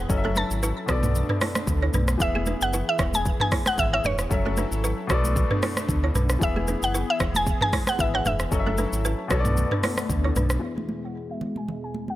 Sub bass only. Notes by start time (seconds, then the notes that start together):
0.10 F#1
0.51 G#1
0.89 B1
1.67 D2
1.94 B1
2.20 E1
2.61 F#1
2.99 E1
3.78 G#1
4.04 E1
4.31 F#1
4.71 G#1
5.10 B1
5.89 D2
6.15 B1
6.41 E1
6.82 F#1
7.20 E1
7.99 G#1
8.25 E1
8.52 F#1
8.92 G#1
9.31 B1
10.10 D2
10.36 B1